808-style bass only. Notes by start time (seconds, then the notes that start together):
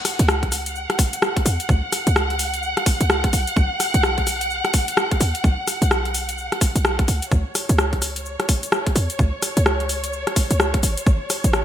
0.19 C#2
1.46 E2
1.69 C#2
2.07 C#2
3.01 C#2
3.33 B1
3.57 B1
3.94 B1
5.21 D#2
5.44 B1
5.82 B1
6.76 B1
7.08 C#2
7.32 C#2
7.69 C#2
8.96 E2
9.19 C#2
9.57 C#2
10.51 C#2
10.83 G#1
11.07 G#1
11.44 G#1